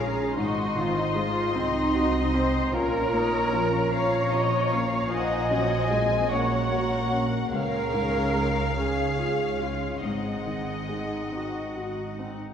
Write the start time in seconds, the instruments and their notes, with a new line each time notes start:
Already playing: double bass section A#1, grand piano C#2 G#2 A#3 F4, viola section C#4 F4, cello section G#4, violin section C#5 F5 A#5
0.00 grand piano C#4
0.37 double bass section G#1, grand piano G#2, viola section D#4, cello section F#4, violin section C5 D#5 C6
0.76 grand piano D#3, cello section F4
0.98 cello section D#4
1.15 grand piano G#3, cello section F4
1.55 double bass section C2, grand piano C4, viola section C4 D#4, cello section D#4, violin section D#5
1.95 grand piano F#4
2.34 grand piano C4, cello section C5
2.73 double bass section A#1, grand piano A#2, viola section C#4 F4, cello section A#4, violin section C#5 A#5
3.13 grand piano A#3, viola section D#4
3.53 grand piano F3, viola section C#4
3.93 viola section F3 C#4, grand piano C#4, violin section C#5 F5, cello section C#5
4.32 viola section C3, grand piano F4, violin section D#5
4.72 viola section A#3, grand piano C#4, violin section F5
5.11 double bass section A#1, grand piano A#2, viola section D#4, violin section C5 F#5 G#5, cello section D#5
5.51 grand piano F#3, viola section C#4, violin section F#5
5.90 grand piano G#3, viola section C4, violin section G#5
6.31 viola section A#3 F#4, grand piano C#4, violin section A#4 F#5, cello section C#5
6.71 grand piano F#4
7.12 grand piano C#4
7.52 grand piano C#2, double bass section C#2, viola section C#4 G#4, cello section A#4, violin section C#5 F5
7.93 grand piano G#2
8.35 grand piano G#3
8.77 grand piano C#4, viola section C#4 G#4, cello section G#4, violin section C#5 F5
9.19 grand piano F4
9.61 grand piano C#4, cello section F4
10.03 double bass section G#1, grand piano G#2, viola section C4 G#4, cello section D#4, violin section D#5 F#5
10.47 grand piano D#3
10.89 grand piano G#3
11.32 grand piano C4, viola section F#4
11.75 viola section F#4, grand piano F#4
12.18 grand piano C4, viola section D#4